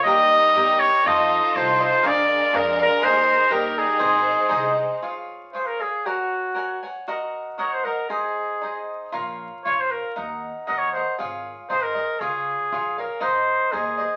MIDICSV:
0, 0, Header, 1, 5, 480
1, 0, Start_track
1, 0, Key_signature, -4, "major"
1, 0, Tempo, 495050
1, 45, Time_signature, 2, 2, 24, 8
1, 4365, Tempo, 514580
1, 4846, Key_signature, -5, "major"
1, 9645, Tempo, 505902
1, 13443, End_track
2, 0, Start_track
2, 0, Title_t, "Cavaquinho"
2, 0, Program_c, 0, 24
2, 55, Note_on_c, 0, 67, 84
2, 65, Note_on_c, 0, 70, 85
2, 65, Note_on_c, 0, 79, 76
2, 67, Note_on_c, 0, 75, 88
2, 527, Note_off_c, 0, 67, 0
2, 535, Note_off_c, 0, 79, 0
2, 536, Note_off_c, 0, 70, 0
2, 536, Note_off_c, 0, 75, 0
2, 538, Note_on_c, 0, 67, 69
2, 548, Note_on_c, 0, 70, 74
2, 554, Note_on_c, 0, 75, 69
2, 559, Note_on_c, 0, 79, 68
2, 1019, Note_off_c, 0, 67, 0
2, 1024, Note_off_c, 0, 70, 0
2, 1027, Note_off_c, 0, 75, 0
2, 1029, Note_off_c, 0, 79, 0
2, 1029, Note_on_c, 0, 65, 74
2, 1032, Note_on_c, 0, 72, 65
2, 1036, Note_on_c, 0, 69, 81
2, 1037, Note_on_c, 0, 75, 72
2, 1495, Note_off_c, 0, 65, 0
2, 1507, Note_off_c, 0, 72, 0
2, 1507, Note_on_c, 0, 65, 62
2, 1509, Note_off_c, 0, 69, 0
2, 1509, Note_off_c, 0, 75, 0
2, 1520, Note_on_c, 0, 69, 63
2, 1521, Note_on_c, 0, 72, 70
2, 1521, Note_on_c, 0, 75, 67
2, 1731, Note_off_c, 0, 75, 0
2, 1742, Note_on_c, 0, 75, 46
2, 1744, Note_off_c, 0, 72, 0
2, 1752, Note_off_c, 0, 65, 0
2, 1752, Note_off_c, 0, 69, 0
2, 1756, Note_on_c, 0, 72, 37
2, 1763, Note_on_c, 0, 69, 43
2, 1959, Note_off_c, 0, 69, 0
2, 1963, Note_on_c, 0, 70, 73
2, 1966, Note_on_c, 0, 68, 72
2, 1968, Note_off_c, 0, 72, 0
2, 1970, Note_off_c, 0, 75, 0
2, 1971, Note_on_c, 0, 77, 75
2, 1974, Note_on_c, 0, 74, 79
2, 2444, Note_off_c, 0, 68, 0
2, 2445, Note_off_c, 0, 70, 0
2, 2449, Note_off_c, 0, 77, 0
2, 2450, Note_off_c, 0, 74, 0
2, 2455, Note_on_c, 0, 68, 70
2, 2456, Note_on_c, 0, 70, 65
2, 2460, Note_on_c, 0, 77, 67
2, 2468, Note_on_c, 0, 74, 76
2, 2686, Note_off_c, 0, 74, 0
2, 2692, Note_off_c, 0, 77, 0
2, 2698, Note_on_c, 0, 74, 48
2, 2701, Note_off_c, 0, 68, 0
2, 2702, Note_off_c, 0, 70, 0
2, 2703, Note_on_c, 0, 77, 44
2, 2714, Note_on_c, 0, 70, 40
2, 2917, Note_off_c, 0, 70, 0
2, 2926, Note_off_c, 0, 74, 0
2, 2926, Note_on_c, 0, 68, 82
2, 2929, Note_off_c, 0, 77, 0
2, 2929, Note_on_c, 0, 70, 75
2, 2936, Note_on_c, 0, 75, 76
2, 2937, Note_on_c, 0, 80, 85
2, 3393, Note_off_c, 0, 68, 0
2, 3393, Note_off_c, 0, 70, 0
2, 3397, Note_on_c, 0, 67, 78
2, 3398, Note_off_c, 0, 75, 0
2, 3404, Note_on_c, 0, 70, 72
2, 3406, Note_off_c, 0, 80, 0
2, 3410, Note_on_c, 0, 75, 70
2, 3412, Note_on_c, 0, 79, 84
2, 3862, Note_off_c, 0, 75, 0
2, 3866, Note_off_c, 0, 67, 0
2, 3869, Note_off_c, 0, 70, 0
2, 3869, Note_off_c, 0, 79, 0
2, 3870, Note_on_c, 0, 63, 70
2, 3873, Note_on_c, 0, 68, 72
2, 3873, Note_on_c, 0, 75, 81
2, 3876, Note_on_c, 0, 72, 93
2, 4339, Note_off_c, 0, 63, 0
2, 4349, Note_off_c, 0, 72, 0
2, 4350, Note_on_c, 0, 63, 79
2, 4352, Note_off_c, 0, 68, 0
2, 4356, Note_off_c, 0, 75, 0
2, 4356, Note_on_c, 0, 68, 75
2, 4361, Note_on_c, 0, 72, 68
2, 4368, Note_on_c, 0, 75, 71
2, 4840, Note_off_c, 0, 63, 0
2, 4845, Note_off_c, 0, 72, 0
2, 4848, Note_off_c, 0, 68, 0
2, 4848, Note_off_c, 0, 75, 0
2, 4851, Note_on_c, 0, 65, 50
2, 4852, Note_on_c, 0, 68, 54
2, 4855, Note_on_c, 0, 73, 54
2, 4862, Note_on_c, 0, 77, 57
2, 5316, Note_off_c, 0, 65, 0
2, 5326, Note_off_c, 0, 73, 0
2, 5327, Note_on_c, 0, 65, 44
2, 5328, Note_off_c, 0, 68, 0
2, 5335, Note_off_c, 0, 77, 0
2, 5337, Note_on_c, 0, 73, 47
2, 5339, Note_on_c, 0, 68, 44
2, 5347, Note_on_c, 0, 77, 45
2, 5559, Note_off_c, 0, 77, 0
2, 5567, Note_off_c, 0, 73, 0
2, 5570, Note_on_c, 0, 77, 27
2, 5578, Note_off_c, 0, 68, 0
2, 5581, Note_off_c, 0, 65, 0
2, 5582, Note_on_c, 0, 73, 31
2, 5592, Note_on_c, 0, 68, 24
2, 5806, Note_off_c, 0, 77, 0
2, 5808, Note_off_c, 0, 73, 0
2, 5813, Note_off_c, 0, 68, 0
2, 5815, Note_on_c, 0, 78, 54
2, 5817, Note_on_c, 0, 70, 58
2, 5820, Note_on_c, 0, 73, 61
2, 5822, Note_on_c, 0, 80, 54
2, 6259, Note_off_c, 0, 70, 0
2, 6269, Note_off_c, 0, 73, 0
2, 6270, Note_on_c, 0, 70, 45
2, 6273, Note_off_c, 0, 78, 0
2, 6276, Note_off_c, 0, 80, 0
2, 6280, Note_on_c, 0, 73, 43
2, 6284, Note_on_c, 0, 78, 53
2, 6287, Note_on_c, 0, 80, 60
2, 6522, Note_off_c, 0, 80, 0
2, 6524, Note_off_c, 0, 70, 0
2, 6529, Note_off_c, 0, 73, 0
2, 6531, Note_off_c, 0, 78, 0
2, 6533, Note_on_c, 0, 80, 36
2, 6541, Note_on_c, 0, 78, 31
2, 6543, Note_on_c, 0, 73, 31
2, 6759, Note_off_c, 0, 80, 0
2, 6763, Note_off_c, 0, 78, 0
2, 6764, Note_off_c, 0, 73, 0
2, 6767, Note_on_c, 0, 66, 63
2, 6770, Note_on_c, 0, 70, 72
2, 6773, Note_on_c, 0, 75, 68
2, 6775, Note_on_c, 0, 78, 60
2, 7223, Note_off_c, 0, 66, 0
2, 7229, Note_off_c, 0, 70, 0
2, 7232, Note_off_c, 0, 75, 0
2, 7234, Note_on_c, 0, 66, 46
2, 7236, Note_off_c, 0, 78, 0
2, 7240, Note_on_c, 0, 70, 53
2, 7243, Note_on_c, 0, 75, 61
2, 7247, Note_on_c, 0, 78, 62
2, 7476, Note_off_c, 0, 78, 0
2, 7479, Note_off_c, 0, 75, 0
2, 7482, Note_off_c, 0, 66, 0
2, 7485, Note_off_c, 0, 70, 0
2, 7487, Note_on_c, 0, 78, 35
2, 7491, Note_on_c, 0, 75, 31
2, 7501, Note_on_c, 0, 70, 32
2, 7711, Note_off_c, 0, 75, 0
2, 7713, Note_off_c, 0, 78, 0
2, 7715, Note_off_c, 0, 70, 0
2, 7715, Note_on_c, 0, 63, 47
2, 7718, Note_on_c, 0, 68, 53
2, 7718, Note_on_c, 0, 72, 57
2, 7722, Note_on_c, 0, 75, 67
2, 8190, Note_off_c, 0, 63, 0
2, 8197, Note_off_c, 0, 68, 0
2, 8197, Note_off_c, 0, 72, 0
2, 8199, Note_off_c, 0, 75, 0
2, 8201, Note_on_c, 0, 63, 48
2, 8212, Note_on_c, 0, 68, 43
2, 8216, Note_on_c, 0, 72, 51
2, 8226, Note_on_c, 0, 75, 44
2, 8671, Note_off_c, 0, 63, 0
2, 8674, Note_off_c, 0, 68, 0
2, 8675, Note_on_c, 0, 65, 55
2, 8678, Note_on_c, 0, 70, 71
2, 8681, Note_off_c, 0, 72, 0
2, 8684, Note_off_c, 0, 75, 0
2, 8685, Note_on_c, 0, 73, 61
2, 8688, Note_on_c, 0, 77, 62
2, 9158, Note_off_c, 0, 65, 0
2, 9163, Note_off_c, 0, 70, 0
2, 9166, Note_off_c, 0, 73, 0
2, 9168, Note_off_c, 0, 77, 0
2, 9169, Note_on_c, 0, 65, 52
2, 9177, Note_on_c, 0, 70, 44
2, 9180, Note_on_c, 0, 73, 57
2, 9190, Note_on_c, 0, 77, 56
2, 9630, Note_off_c, 0, 70, 0
2, 9641, Note_off_c, 0, 65, 0
2, 9641, Note_on_c, 0, 70, 61
2, 9645, Note_on_c, 0, 63, 52
2, 9646, Note_off_c, 0, 77, 0
2, 9647, Note_off_c, 0, 73, 0
2, 9650, Note_on_c, 0, 78, 59
2, 9651, Note_on_c, 0, 75, 54
2, 10115, Note_off_c, 0, 63, 0
2, 10117, Note_off_c, 0, 70, 0
2, 10126, Note_on_c, 0, 63, 52
2, 10127, Note_off_c, 0, 75, 0
2, 10128, Note_on_c, 0, 70, 58
2, 10129, Note_off_c, 0, 78, 0
2, 10139, Note_on_c, 0, 75, 53
2, 10143, Note_on_c, 0, 78, 54
2, 10377, Note_off_c, 0, 63, 0
2, 10378, Note_off_c, 0, 70, 0
2, 10381, Note_off_c, 0, 78, 0
2, 10384, Note_off_c, 0, 75, 0
2, 10393, Note_on_c, 0, 78, 33
2, 10400, Note_on_c, 0, 75, 28
2, 10405, Note_on_c, 0, 70, 33
2, 10610, Note_off_c, 0, 70, 0
2, 10614, Note_off_c, 0, 78, 0
2, 10614, Note_on_c, 0, 68, 51
2, 10615, Note_on_c, 0, 65, 56
2, 10618, Note_off_c, 0, 75, 0
2, 10626, Note_on_c, 0, 73, 54
2, 10627, Note_on_c, 0, 77, 70
2, 11089, Note_off_c, 0, 65, 0
2, 11094, Note_off_c, 0, 73, 0
2, 11095, Note_off_c, 0, 77, 0
2, 11099, Note_on_c, 0, 63, 50
2, 11101, Note_off_c, 0, 68, 0
2, 11102, Note_on_c, 0, 72, 57
2, 11105, Note_on_c, 0, 68, 53
2, 11110, Note_on_c, 0, 75, 55
2, 11325, Note_off_c, 0, 75, 0
2, 11335, Note_off_c, 0, 72, 0
2, 11337, Note_on_c, 0, 75, 36
2, 11340, Note_off_c, 0, 68, 0
2, 11342, Note_off_c, 0, 63, 0
2, 11347, Note_on_c, 0, 72, 31
2, 11351, Note_on_c, 0, 68, 31
2, 11566, Note_off_c, 0, 75, 0
2, 11571, Note_off_c, 0, 72, 0
2, 11573, Note_off_c, 0, 68, 0
2, 11586, Note_on_c, 0, 65, 63
2, 11586, Note_on_c, 0, 73, 56
2, 11588, Note_on_c, 0, 68, 63
2, 11593, Note_on_c, 0, 77, 65
2, 12063, Note_off_c, 0, 65, 0
2, 12063, Note_off_c, 0, 73, 0
2, 12067, Note_off_c, 0, 77, 0
2, 12075, Note_on_c, 0, 65, 53
2, 12083, Note_off_c, 0, 68, 0
2, 12087, Note_on_c, 0, 68, 53
2, 12087, Note_on_c, 0, 73, 53
2, 12089, Note_on_c, 0, 77, 54
2, 12306, Note_off_c, 0, 77, 0
2, 12317, Note_off_c, 0, 73, 0
2, 12317, Note_on_c, 0, 77, 35
2, 12318, Note_off_c, 0, 65, 0
2, 12324, Note_off_c, 0, 68, 0
2, 12329, Note_on_c, 0, 73, 45
2, 12335, Note_on_c, 0, 68, 31
2, 12525, Note_off_c, 0, 68, 0
2, 12531, Note_on_c, 0, 63, 66
2, 12535, Note_off_c, 0, 77, 0
2, 12536, Note_on_c, 0, 68, 54
2, 12538, Note_off_c, 0, 73, 0
2, 12539, Note_on_c, 0, 75, 70
2, 12542, Note_on_c, 0, 72, 70
2, 13009, Note_off_c, 0, 63, 0
2, 13012, Note_off_c, 0, 68, 0
2, 13013, Note_off_c, 0, 75, 0
2, 13014, Note_off_c, 0, 72, 0
2, 13022, Note_on_c, 0, 63, 45
2, 13025, Note_on_c, 0, 68, 50
2, 13030, Note_on_c, 0, 72, 58
2, 13035, Note_on_c, 0, 75, 61
2, 13251, Note_off_c, 0, 75, 0
2, 13263, Note_off_c, 0, 63, 0
2, 13263, Note_on_c, 0, 75, 45
2, 13265, Note_off_c, 0, 68, 0
2, 13267, Note_off_c, 0, 72, 0
2, 13278, Note_on_c, 0, 72, 38
2, 13282, Note_on_c, 0, 68, 30
2, 13443, Note_off_c, 0, 68, 0
2, 13443, Note_off_c, 0, 72, 0
2, 13443, Note_off_c, 0, 75, 0
2, 13443, End_track
3, 0, Start_track
3, 0, Title_t, "Trumpet"
3, 0, Program_c, 1, 56
3, 33, Note_on_c, 1, 75, 107
3, 770, Note_on_c, 1, 73, 94
3, 785, Note_off_c, 1, 75, 0
3, 1034, Note_on_c, 1, 75, 88
3, 1048, Note_off_c, 1, 73, 0
3, 1511, Note_on_c, 1, 72, 75
3, 1526, Note_off_c, 1, 75, 0
3, 1754, Note_off_c, 1, 72, 0
3, 1774, Note_on_c, 1, 72, 86
3, 2006, Note_on_c, 1, 74, 83
3, 2021, Note_off_c, 1, 72, 0
3, 2478, Note_on_c, 1, 70, 76
3, 2493, Note_off_c, 1, 74, 0
3, 2713, Note_off_c, 1, 70, 0
3, 2725, Note_on_c, 1, 70, 95
3, 2947, Note_on_c, 1, 72, 94
3, 2961, Note_off_c, 1, 70, 0
3, 3408, Note_on_c, 1, 70, 81
3, 3423, Note_off_c, 1, 72, 0
3, 3667, Note_on_c, 1, 68, 86
3, 3682, Note_off_c, 1, 70, 0
3, 4624, Note_off_c, 1, 68, 0
3, 5331, Note_on_c, 1, 72, 62
3, 5449, Note_on_c, 1, 70, 75
3, 5463, Note_off_c, 1, 72, 0
3, 5585, Note_on_c, 1, 68, 70
3, 5599, Note_off_c, 1, 70, 0
3, 5819, Note_on_c, 1, 66, 63
3, 5833, Note_off_c, 1, 68, 0
3, 6535, Note_off_c, 1, 66, 0
3, 7253, Note_on_c, 1, 73, 64
3, 7377, Note_on_c, 1, 72, 71
3, 7391, Note_off_c, 1, 73, 0
3, 7482, Note_on_c, 1, 70, 71
3, 7496, Note_off_c, 1, 72, 0
3, 7711, Note_off_c, 1, 70, 0
3, 7719, Note_on_c, 1, 68, 64
3, 8412, Note_off_c, 1, 68, 0
3, 9165, Note_on_c, 1, 73, 73
3, 9308, Note_on_c, 1, 72, 71
3, 9322, Note_off_c, 1, 73, 0
3, 9411, Note_on_c, 1, 70, 63
3, 9425, Note_off_c, 1, 72, 0
3, 9641, Note_off_c, 1, 70, 0
3, 10131, Note_on_c, 1, 75, 69
3, 10231, Note_on_c, 1, 73, 77
3, 10245, Note_off_c, 1, 75, 0
3, 10358, Note_off_c, 1, 73, 0
3, 10364, Note_on_c, 1, 72, 57
3, 10583, Note_off_c, 1, 72, 0
3, 11102, Note_on_c, 1, 72, 77
3, 11221, Note_on_c, 1, 70, 82
3, 11235, Note_off_c, 1, 72, 0
3, 11577, Note_on_c, 1, 68, 70
3, 11592, Note_off_c, 1, 70, 0
3, 12313, Note_off_c, 1, 68, 0
3, 12322, Note_on_c, 1, 70, 60
3, 12552, Note_on_c, 1, 72, 71
3, 12566, Note_off_c, 1, 70, 0
3, 13021, Note_on_c, 1, 68, 66
3, 13035, Note_off_c, 1, 72, 0
3, 13443, Note_off_c, 1, 68, 0
3, 13443, End_track
4, 0, Start_track
4, 0, Title_t, "Violin section"
4, 0, Program_c, 2, 48
4, 52, Note_on_c, 2, 63, 85
4, 55, Note_on_c, 2, 55, 85
4, 60, Note_on_c, 2, 70, 85
4, 1008, Note_off_c, 2, 55, 0
4, 1010, Note_off_c, 2, 70, 0
4, 1016, Note_on_c, 2, 65, 81
4, 1020, Note_on_c, 2, 69, 84
4, 1960, Note_off_c, 2, 63, 0
4, 1968, Note_off_c, 2, 65, 0
4, 1970, Note_off_c, 2, 69, 0
4, 1971, Note_on_c, 2, 56, 84
4, 1972, Note_on_c, 2, 62, 69
4, 1978, Note_on_c, 2, 70, 99
4, 2915, Note_off_c, 2, 62, 0
4, 2925, Note_on_c, 2, 63, 76
4, 3384, Note_off_c, 2, 56, 0
4, 3388, Note_on_c, 2, 55, 71
4, 3859, Note_off_c, 2, 70, 0
4, 3866, Note_off_c, 2, 55, 0
4, 3875, Note_on_c, 2, 72, 83
4, 3881, Note_on_c, 2, 56, 79
4, 4828, Note_off_c, 2, 63, 0
4, 4836, Note_off_c, 2, 72, 0
4, 4839, Note_off_c, 2, 56, 0
4, 13443, End_track
5, 0, Start_track
5, 0, Title_t, "Upright bass"
5, 0, Program_c, 3, 32
5, 42, Note_on_c, 3, 39, 94
5, 355, Note_off_c, 3, 39, 0
5, 529, Note_on_c, 3, 40, 105
5, 844, Note_off_c, 3, 40, 0
5, 1022, Note_on_c, 3, 41, 105
5, 1334, Note_off_c, 3, 41, 0
5, 1508, Note_on_c, 3, 36, 113
5, 1815, Note_off_c, 3, 36, 0
5, 1978, Note_on_c, 3, 34, 89
5, 2287, Note_off_c, 3, 34, 0
5, 2463, Note_on_c, 3, 41, 116
5, 2768, Note_off_c, 3, 41, 0
5, 2942, Note_on_c, 3, 39, 98
5, 3245, Note_off_c, 3, 39, 0
5, 3408, Note_on_c, 3, 39, 100
5, 3715, Note_off_c, 3, 39, 0
5, 3885, Note_on_c, 3, 32, 106
5, 4199, Note_off_c, 3, 32, 0
5, 4371, Note_on_c, 3, 36, 101
5, 4682, Note_off_c, 3, 36, 0
5, 8695, Note_on_c, 3, 34, 82
5, 9004, Note_off_c, 3, 34, 0
5, 9177, Note_on_c, 3, 34, 82
5, 9484, Note_off_c, 3, 34, 0
5, 9657, Note_on_c, 3, 39, 88
5, 9966, Note_off_c, 3, 39, 0
5, 10152, Note_on_c, 3, 39, 79
5, 10456, Note_off_c, 3, 39, 0
5, 10630, Note_on_c, 3, 32, 94
5, 10933, Note_off_c, 3, 32, 0
5, 11103, Note_on_c, 3, 32, 77
5, 11409, Note_off_c, 3, 32, 0
5, 11583, Note_on_c, 3, 37, 87
5, 11894, Note_off_c, 3, 37, 0
5, 12074, Note_on_c, 3, 34, 80
5, 12382, Note_off_c, 3, 34, 0
5, 12557, Note_on_c, 3, 32, 72
5, 12859, Note_off_c, 3, 32, 0
5, 13032, Note_on_c, 3, 39, 87
5, 13330, Note_off_c, 3, 39, 0
5, 13443, End_track
0, 0, End_of_file